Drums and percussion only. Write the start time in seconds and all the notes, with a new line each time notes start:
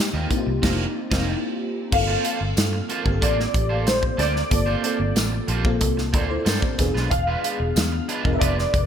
0.31 kick, closed hi-hat
0.63 kick, snare, crash
1.12 kick, snare, crash
1.92 kick, crash
2.25 closed hi-hat
2.57 snare, closed hi-hat, tambourine
2.90 closed hi-hat
3.06 kick
3.22 kick, closed hi-hat
3.40 snare
3.54 kick, closed hi-hat
3.87 snare, closed hi-hat, tambourine
4.03 kick
4.19 snare, closed hi-hat
4.36 snare
4.51 kick, closed hi-hat
4.84 closed hi-hat
5.16 snare, closed hi-hat, tambourine
5.48 closed hi-hat
5.65 kick
5.81 kick, closed hi-hat
5.98 snare
6.14 kick, closed hi-hat
6.46 snare, closed hi-hat, tambourine
6.62 kick
6.79 kick, snare, closed hi-hat
6.96 snare
7.11 kick, closed hi-hat
7.44 closed hi-hat
7.76 snare, closed hi-hat, tambourine
8.09 closed hi-hat
8.25 kick
8.41 kick, closed hi-hat
8.59 snare
8.74 kick, closed hi-hat